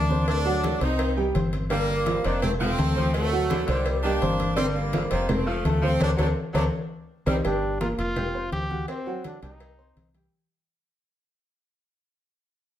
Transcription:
Already playing: fingered electric bass D2, horn section A#3 D4
0.09 grand piano C4 C5 C6, high conga
0.28 horn section A3 D4, cowbell, high conga
0.45 grand piano F#3 F#4 F#5, high conga
0.64 cowbell, high conga
0.81 fingered electric bass C2, grand piano C4 C5 C6, horn section C4 D#4, cowbell, high conga
0.99 cowbell, high conga
1.17 grand piano G3 G4 G5, high conga
1.34 fingered electric bass G1, grand piano C4 C5 C6, cowbell, high conga
1.53 cowbell, high conga
1.70 grand piano D3 D4 D5, saxophone section G3, horn section G3 A#3, cowbell, high conga
1.89 high conga
2.06 saxophone section D3, grand piano F3 F4 F5, cowbell, high conga
2.24 fingered electric bass F1, saxophone section D#3, horn section A#3 D4, grand piano C4 C5 C6, cowbell, high conga
2.42 horn section A3 C4, cowbell, high conga, low conga
2.60 saxophone section F3, horn section A3 C4, grand piano F4 F5 F6, high conga, low conga
2.78 fingered electric bass D2, grand piano A3 A4 A5, cowbell, high conga
2.96 saxophone section F3, grand piano C4 C5 C6, high conga
3.14 horn section F#3 A3, cowbell, high conga
3.32 grand piano F#3 F#4 F#5, high conga
3.50 saxophone section D3, cowbell, high conga
3.67 fingered electric bass C2, saxophone section D3, horn section D#3 G3, grand piano C4 C5 C6, cowbell, high conga
3.86 cowbell, high conga
4.02 saxophone section D#3, grand piano G3 G4 G5, horn section A#3 D4, high conga
4.22 fingered electric bass G1, grand piano C4 C5 C6, cowbell, high conga
4.40 cowbell, high conga
4.56 grand piano D3 D4 D5, saxophone section G3, horn section G3 C4, cowbell, high conga
4.75 horn section G3 A#3, high conga
4.93 saxophone section D3, grand piano F3 F4 F5, cowbell, high conga
5.11 fingered electric bass F1, saxophone section D#3, horn section G3 A#3, grand piano C4 C5 C6, cowbell
5.29 horn section A3 C4, cowbell, high conga, low conga
5.46 saxophone section F3, horn section F3 A3, grand piano F4 F5 F6, high conga
5.64 fingered electric bass D2, grand piano A3 A4 A5, cowbell, high conga
5.82 saxophone section F3, horn section A3 C4, grand piano C4 C5 C6, high conga
5.99 fingered electric bass D2, saxophone section C3 D3 F#3, horn section A3 C4 D4, grand piano A4 C5 D5, cowbell, high conga
6.17 fingered electric bass D2, saxophone section C3 D3 F#3, horn section A3 C4 D4, grand piano A4 C5 D5, cowbell, high conga
6.53 fingered electric bass D2, saxophone section C3 D3 F#3, horn section A3 C4 D4, grand piano A4 C5 D5, cowbell, high conga
7.26 fingered electric bass C2, saxophone section C3 D#3 G3, horn section D#3 G3 C4, grand piano D#4 G4 C5, cowbell, high conga
7.44 fingered electric bass G1, grand piano G3 G4 G5, trombone D4, cowbell
7.63 high conga
7.80 grand piano A#3 A#4 A#5, trombone F4, cowbell, high conga
7.98 fingered electric bass F1, trombone F4, cowbell, high conga
8.16 grand piano G4 G5 G6, cowbell, high conga, low conga
8.34 grand piano C4 C5 C6, high conga
8.52 fingered electric bass D2, trombone G4, cowbell, high conga
8.70 grand piano F#4 F#5 F#6, high conga
8.88 grand piano C4 C5 C6, trombone C4, cowbell, high conga
9.06 grand piano F#3 F#4 F#5, high conga
9.24 trombone D4, cowbell, high conga
9.42 fingered electric bass C2, grand piano G3 G4 G5, trombone D#4, cowbell, high conga
9.60 cowbell, high conga
9.78 grand piano C4 C5 C6, high conga
9.96 fingered electric bass C2, cowbell, high conga
10.14 grand piano G3 G4 G5, cowbell, high conga

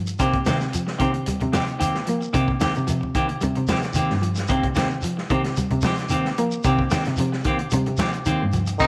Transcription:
Already playing: clean electric guitar F3
0.07 closed hi-hat, shekere
0.19 clean electric guitar C3 D#3 A#3 C4 G4, cello C3, kick, closed hi-hat, shekere
0.33 kick, closed hi-hat
0.46 cello C3, clean electric guitar D#3 A#3 C4 G4, snare, closed hi-hat, high conga, shekere
0.59 muted clean electric guitar stroke, snare, shekere
0.72 clean electric guitar F3, muted clean electric guitar stroke, closed hi-hat, shekere
0.87 muted clean electric guitar stroke, snare
0.98 cello C3, clean electric guitar D#3 A#3 C4 G4, kick, closed hi-hat, shekere
1.13 muted clean electric guitar stroke, closed hi-hat
1.26 clean electric guitar G3, closed hi-hat, high conga, shekere
1.40 cello C3, muted clean electric guitar stroke, closed hi-hat, high conga
1.52 clean electric guitar D#3 F3 A#3 C4 G4, snare, closed hi-hat, high conga, shekere
1.66 muted clean electric guitar stroke, closed hi-hat, shekere
1.79 clean electric guitar D#3 A#3 C4 G4, closed hi-hat, high conga, shekere
1.95 snare
2.06 clean electric guitar F3, cello A#3, muted clean electric guitar stroke, closed hi-hat, shekere
2.21 muted clean electric guitar stroke, shekere
2.33 cello C3, clean electric guitar C3 D#3 A#3 C4 G4, kick, closed hi-hat, shekere
2.48 kick
2.60 clean electric guitar D#3 A#3 C4 G4, snare, closed hi-hat, high conga, shekere
2.74 cello C3, muted clean electric guitar stroke, closed hi-hat, shekere
2.87 cello C3, clean electric guitar F3, muted clean electric guitar stroke, closed hi-hat, shekere
3.01 muted clean electric guitar stroke, high conga
3.15 clean electric guitar D#3 A#3 C4 G4, kick, closed hi-hat, shekere
3.28 muted clean electric guitar stroke, closed hi-hat
3.41 cello C3, clean electric guitar G3, closed hi-hat, high conga, shekere
3.55 cello C3, muted clean electric guitar stroke, closed hi-hat
3.67 clean electric guitar D#3 F3 A#3 C4 G4, snare, closed hi-hat, high conga, shekere
3.82 muted clean electric guitar stroke, snare, closed hi-hat, shekere
3.94 cello C3, clean electric guitar D#3 A#3 C4 G4, closed hi-hat, high conga, shekere
4.10 cello G2, snare
4.22 clean electric guitar F3, muted clean electric guitar stroke, closed hi-hat, shekere
4.35 muted clean electric guitar stroke, snare, closed hi-hat, shekere
4.48 clean electric guitar C3 D#3 A#3 C4 G4, cello C3, kick, closed hi-hat, shekere
4.63 kick, closed hi-hat
4.75 cello C3, clean electric guitar D#3 A#3 C4 G4, snare, closed hi-hat, high conga, shekere
4.89 muted clean electric guitar stroke, shekere
5.02 clean electric guitar F3, muted clean electric guitar stroke, closed hi-hat, shekere
5.17 muted clean electric guitar stroke, snare
5.29 cello C3, clean electric guitar D#3 A#3 C4 G4, kick, closed hi-hat, shekere
5.44 muted clean electric guitar stroke, snare, closed hi-hat
5.56 clean electric guitar G3, closed hi-hat, high conga, shekere
5.71 cello C3, muted clean electric guitar stroke, closed hi-hat, high conga
5.82 clean electric guitar F3 C4 G4, snare, closed hi-hat, high conga, shekere
5.96 muted clean electric guitar stroke, snare, closed hi-hat, shekere
6.09 clean electric guitar D#3 A#3 C4 G4, closed hi-hat, high conga, shekere
6.25 snare
6.37 clean electric guitar F3, cello A#3, muted clean electric guitar stroke, closed hi-hat, shekere
6.51 muted clean electric guitar stroke, shekere
6.63 clean electric guitar C3 D#3 A#3 C4 G4, cello C3, kick, closed hi-hat, shekere
6.79 kick
6.91 clean electric guitar D#3 A#3 C4 G4, snare, closed hi-hat, high conga, shekere
7.04 cello C3, muted clean electric guitar stroke, snare, closed hi-hat, shekere
7.16 cello C3, clean electric guitar F3, muted clean electric guitar stroke, closed hi-hat, shekere
7.32 muted clean electric guitar stroke, snare
7.43 clean electric guitar D#3 A#3 C4 G4, kick, closed hi-hat, shekere
7.59 muted clean electric guitar stroke, closed hi-hat
7.71 cello C3, clean electric guitar G3, closed hi-hat, high conga, shekere
7.86 cello C3, muted clean electric guitar stroke, closed hi-hat
7.97 clean electric guitar D#3 F3 A#3 C4 G4, snare, closed hi-hat, high conga, shekere
8.13 muted clean electric guitar stroke, closed hi-hat, shekere
8.25 cello C3, clean electric guitar D#3 A#3 C4 G4, closed hi-hat, high conga, shekere
8.42 cello G2
8.52 clean electric guitar F3, muted clean electric guitar stroke, closed hi-hat, high conga, shekere
8.67 muted clean electric guitar stroke, closed hi-hat, shekere
8.79 clean electric guitar C3 D#3 A#3 C4 G4, cello C3, trombone D#3, tenor saxophone D#4, kick, crash, shekere

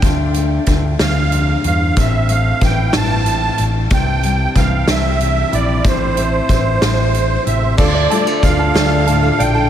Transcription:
0.02 steel-string acoustic guitar D2 D3 A3 D4 F4, picked electric bass D2, kick, closed hi-hat
0.34 steel-string acoustic guitar A3, closed hi-hat
0.66 picked electric bass D2, steel-string acoustic guitar D3, kick, closed hi-hat
0.99 picked electric bass D2, steel-string acoustic guitar E2, accordion F5, snare, closed hi-hat
1.32 steel-string acoustic guitar F2, closed hi-hat
1.64 picked electric bass E2, steel-string acoustic guitar G2, accordion F5, closed hi-hat
1.97 picked electric bass A1, steel-string acoustic guitar A2 C4, accordion E5, kick, closed hi-hat
2.29 steel-string acoustic guitar A3, accordion F5, closed hi-hat
2.61 picked electric bass A1, steel-string acoustic guitar E3, accordion G5, kick, closed hi-hat
2.93 picked electric bass A1, steel-string acoustic guitar G2, accordion A5, snare, closed hi-hat
3.26 steel-string acoustic guitar A2, closed hi-hat
3.58 picked electric bass A1, closed hi-hat
3.90 picked electric bass C2, steel-string acoustic guitar C3 E3 G3 C4, accordion G5, kick, closed hi-hat
4.23 steel-string acoustic guitar G3, closed hi-hat
4.56 picked electric bass C2, steel-string acoustic guitar E3, accordion F5, kick, closed hi-hat
4.88 picked electric bass C2, steel-string acoustic guitar C4, accordion E5, snare, closed hi-hat
5.20 steel-string acoustic guitar C3, closed hi-hat
5.52 picked electric bass A#1, steel-string acoustic guitar E4, accordion D5, closed hi-hat
5.85 picked electric bass A1, steel-string acoustic guitar A2 C4, accordion C5, kick, closed hi-hat
6.17 steel-string acoustic guitar A3, closed hi-hat
6.49 picked electric bass A1, steel-string acoustic guitar E3, kick, closed hi-hat
6.81 picked electric bass A1, steel-string acoustic guitar A2, snare, closed hi-hat
7.14 closed hi-hat
7.45 picked electric bass A1, steel-string acoustic guitar C3, accordion E5, closed hi-hat
7.77 steel-string acoustic guitar D2 F4, upright piano D2 D3 A3 D4 F4 D5, picked electric bass D2, twelve-string acoustic guitar D3 A3 D4 F4 A4, ukulele A4, accordion D5, kick, crash
7.95 ukulele D5
8.10 steel-string acoustic guitar G3, twelve-string acoustic guitar A3 D4 F4 A4, ukulele A5, closed hi-hat
8.26 steel-string acoustic guitar A3, twelve-string acoustic guitar D4 F4 A4, ukulele A4
8.42 picked electric bass D2, steel-string acoustic guitar D3 D4, ukulele D5, accordion F5, kick, closed hi-hat
8.58 twelve-string acoustic guitar D4 F4 A4, ukulele A5
8.74 picked electric bass D2, twelve-string acoustic guitar D3 A3 D4 F4 A4, upright piano A3 D4 F4 D5, steel-string acoustic guitar A3, ukulele A4, snare, closed hi-hat
9.06 steel-string acoustic guitar A2 D4, twelve-string acoustic guitar A3 D4 F4 A4, ukulele A5, closed hi-hat
9.22 twelve-string acoustic guitar D4 F4 A4, ukulele A4
9.39 picked electric bass A#1, ukulele D5, accordion G5, closed hi-hat
9.54 twelve-string acoustic guitar D4 F4 A4, ukulele A5

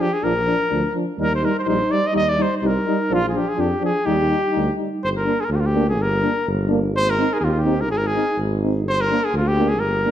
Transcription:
0.01 trumpet G4
0.14 trumpet G#4
0.23 tuba A#1, trombone F3, french horn D4, trumpet A#4
0.45 trombone F3, french horn D4
0.70 tuba D2, trombone F3, french horn D4
0.94 trombone F3, french horn D4
1.18 tuba D#2, trombone G3, french horn D#4, trumpet A#4
1.35 trumpet C5
1.43 trombone G3, french horn D#4, trumpet A#4
1.59 trumpet C5
1.66 tuba A#1, trombone G3, french horn D#4, trumpet C5
1.89 trombone G3, french horn D#4, trumpet D5
2.07 trumpet D#5
2.13 tuba D#2, trombone G3, french horn D#4, trumpet D#5
2.29 trumpet D5
2.38 trombone G3, french horn D#4
2.42 trumpet C5
2.57 trumpet C5
2.62 tuba C2, trombone G3, french horn D#4
2.67 trumpet A#4
2.87 trombone G3, french horn D#4
3.10 tuba A#1, trombone F3, french horn D4
3.14 trumpet F4
3.29 trumpet G#4
3.34 trombone F3, french horn D4, trumpet G4
3.49 trumpet G#4
3.56 tuba F2, trombone F3, french horn D4, trumpet G4
3.81 trombone F3, french horn D4, trumpet G#4
4.06 tuba D#2, trombone G3, french horn D#4, trumpet G4
4.29 trombone G3, french horn D#4
4.52 tuba D2, trombone G3, french horn D#4
4.76 trombone G3, french horn D#4
5.03 tuba G1, trumpet C5
5.17 trumpet A#4
5.25 trombone A#3, french horn D4
5.41 trumpet G#4 A#4
5.49 tuba D2, trumpet F4
5.56 trumpet G4
5.60 trumpet F4
5.66 trumpet G4
5.75 trombone A#3, french horn D4
5.89 trumpet G#4
5.98 tuba G1
6.02 trumpet A#4
6.23 trombone A#3, french horn D4
6.47 tuba G1
6.68 trombone A#3, french horn D4
6.94 tuba G#1, trumpet C5
7.10 trumpet A#4
7.17 trombone C4, french horn D#4
7.33 trumpet G#4 A#4
7.40 tuba D#2, trumpet G#4
7.44 trumpet F4
7.48 trumpet F4 G4
7.57 trumpet G4
7.65 trombone C4, french horn D#4
7.81 trumpet A#4
7.89 tuba G#1, trumpet G#4
7.98 trumpet A#4
8.07 trumpet G#4
8.15 trombone C4, french horn D#4
8.37 tuba G#1
8.63 trombone C4, french horn D#4
8.85 tuba G1, trumpet C5
9.01 trumpet A#4
9.10 trombone A#3, french horn D4
9.24 trumpet G#4
9.33 tuba D2, trumpet F4
9.48 trumpet G4
9.58 trombone A#3, french horn D4
9.68 trumpet G#4
9.80 tuba G1, trumpet A#4
10.04 trombone A#3, french horn D4

